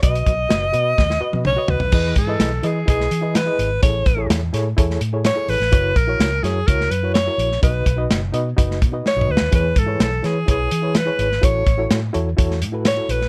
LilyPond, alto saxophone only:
\new Staff \with { instrumentName = "Alto saxophone" } { \time 4/4 \key e \major \tempo 4 = 126 dis''2. cis''8 b'8~ | b'8 a'4 gis'8 gis'4 b'4 | cis''4 r2 cis''8 b'8~ | b'8 ais'4 gis'8 ais'8 b'8 cis''4 |
b'4 r2 cis''8 b'8 | b'8 a'8 a'8 gis'8 gis'4 b'4 | cis''4 r2 cis''8 b'8 | }